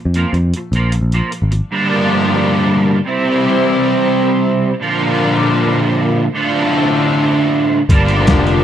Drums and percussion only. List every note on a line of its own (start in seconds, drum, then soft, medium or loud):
0.14 closed hi-hat medium
0.34 closed hi-hat medium
0.54 closed hi-hat medium
0.73 closed hi-hat medium
0.92 closed hi-hat medium
1.12 closed hi-hat medium
1.32 closed hi-hat medium
1.52 closed hi-hat medium
7.89 kick loud
7.89 closed hi-hat medium
8.08 closed hi-hat medium
8.27 kick loud
8.27 snare loud
8.27 closed hi-hat medium
8.47 closed hi-hat medium